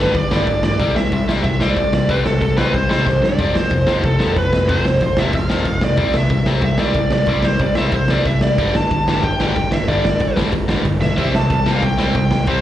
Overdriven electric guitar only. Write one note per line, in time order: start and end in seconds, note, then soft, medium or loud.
0.00 0.13 G2 medium
0.00 0.14 D3 medium
0.00 0.14 G3 medium
0.15 0.29 G2 medium
0.15 0.29 D3 medium
0.31 0.46 G2 medium
0.31 0.46 D3 medium
0.31 0.46 G3 medium
0.47 0.61 G2 medium
0.47 0.62 D3 medium
0.64 0.78 G2 medium
0.64 0.78 D3 medium
0.80 0.95 C3 medium
0.80 0.95 G3 medium
0.80 0.95 C4 medium
0.96 1.10 C3 medium
0.96 1.11 G3 medium
1.13 1.27 C3 medium
1.13 1.27 G3 medium
1.28 1.43 C3 medium
1.28 1.44 G3 medium
1.28 1.43 C4 medium
1.45 1.59 C3 medium
1.45 1.59 G3 medium
1.60 1.75 C3 medium
1.60 1.76 G3 medium
1.60 1.76 C4 loud
1.78 1.92 C3 medium
1.78 1.92 G3 medium
1.93 2.08 C3 medium
1.93 2.08 G3 medium
2.09 2.24 C3 medium
2.09 2.24 G3 medium
2.09 2.24 C4 medium
2.25 2.40 C3 medium
2.25 2.40 G3 medium
2.41 2.56 C3 medium
2.41 2.56 G3 medium
2.57 2.72 C3 medium
2.57 2.72 G3 medium
2.57 2.73 C4 medium
2.73 2.88 C3 medium
2.73 2.88 G3 medium
2.89 3.05 C3 medium
2.89 3.05 G3 medium
2.89 3.05 C4 medium
3.06 3.21 C3 medium
3.06 3.21 G3 medium
3.22 3.37 C3 medium
3.22 3.37 G3 medium
3.39 3.53 F2 medium
3.39 3.54 C3 medium
3.39 3.54 F3 medium
3.55 3.69 F2 medium
3.55 3.70 C3 medium
3.71 3.85 F2 medium
3.71 3.86 C3 medium
3.86 4.02 F2 medium
3.86 4.03 C3 medium
3.86 4.03 F3 medium
4.03 4.17 F2 medium
4.03 4.18 C3 medium
4.19 4.34 F2 medium
4.19 4.35 C3 medium
4.19 4.35 F3 medium
4.35 4.50 F2 medium
4.35 4.51 C3 medium
4.52 4.67 F2 medium
4.52 4.67 C3 medium
4.68 4.84 F2 medium
4.68 4.84 C3 medium
4.68 4.84 F3 loud
4.85 5.00 F2 medium
4.85 5.00 C3 medium
5.02 5.16 F2 medium
5.02 5.16 C3 medium
5.18 5.33 F2 medium
5.18 5.34 C3 loud
5.18 5.34 F3 loud
5.34 5.48 F2 medium
5.34 5.48 C3 medium
5.49 5.64 F2 medium
5.49 5.65 C3 loud
5.49 5.66 F3 loud
5.66 5.81 F2 medium
5.66 5.81 C3 medium
5.82 5.97 F2 medium
5.82 5.96 C3 medium
5.98 6.13 C3 medium
5.98 6.13 G3 medium
5.98 6.14 C4 medium
6.14 6.29 C3 medium
6.14 6.29 G3 medium
6.30 6.45 C3 medium
6.30 6.46 G3 medium
6.46 6.61 C3 medium
6.46 6.62 G3 loud
6.46 6.63 C4 loud
6.63 6.77 C3 medium
6.63 6.78 G3 medium
6.78 6.93 C3 medium
6.78 6.94 G3 loud
6.78 6.95 C4 loud
6.95 7.10 C3 medium
6.95 7.10 G3 medium
7.12 7.27 C3 medium
7.12 7.27 G3 medium
7.28 7.43 C3 medium
7.28 7.43 G3 medium
7.28 7.44 C4 medium
7.44 7.59 C3 medium
7.44 7.60 G3 medium
7.61 7.76 C3 medium
7.61 7.76 G3 medium
7.77 7.93 C3 medium
7.77 7.93 G3 loud
7.77 7.93 C4 medium
7.94 8.09 C3 medium
7.94 8.09 G3 medium
8.10 8.26 C3 medium
8.10 8.26 G3 medium
8.10 8.26 C4 loud
8.27 8.41 C3 medium
8.27 8.42 G3 medium
8.44 8.58 C3 medium
8.44 8.58 G3 medium
8.59 8.74 G2 medium
8.59 8.74 D3 medium
8.59 8.75 G3 medium
8.76 8.90 G2 medium
8.76 8.90 D3 medium
8.91 9.06 G2 medium
8.91 9.06 D3 medium
9.08 9.22 G2 medium
9.08 9.23 D3 medium
9.08 9.24 G3 medium
9.24 9.38 G2 medium
9.24 9.39 D3 medium
9.40 9.55 G2 medium
9.40 9.55 D3 medium
9.40 9.56 G3 medium
9.56 9.70 G2 medium
9.56 9.70 D3 medium
9.71 9.86 G2 medium
9.71 9.87 D3 medium
9.88 10.04 G2 medium
9.88 10.04 D3 medium
9.88 10.04 G3 medium
10.05 10.19 G2 medium
10.05 10.20 D3 medium
10.21 10.35 G2 medium
10.21 10.35 D3 medium
10.36 10.51 G2 medium
10.36 10.51 D3 medium
10.36 10.52 G3 loud
10.52 10.67 G2 medium
10.52 10.67 D3 medium
10.68 10.83 G2 medium
10.68 10.83 D3 medium
10.68 10.84 G3 medium
10.84 11.00 G2 medium
10.84 10.99 D3 medium
11.01 11.16 G2 medium
11.01 11.16 D3 medium
11.17 11.31 C3 medium
11.17 11.32 G3 medium
11.17 11.33 C4 loud
11.33 11.48 C3 medium
11.33 11.49 G3 medium
11.50 11.65 C3 medium
11.50 11.65 G3 medium
11.66 11.82 C3 medium
11.66 11.82 G3 medium
11.66 11.82 C4 loud
11.83 11.96 C3 medium
11.83 11.97 G3 medium
11.98 12.14 C3 medium
11.98 12.14 G3 medium
11.98 12.14 C4 medium
12.15 12.30 C3 medium
12.15 12.30 G3 medium
12.32 12.46 C3 medium
12.32 12.47 G3 medium
12.48 12.61 C3 medium
12.48 12.61 G3 medium
12.48 12.61 C4 medium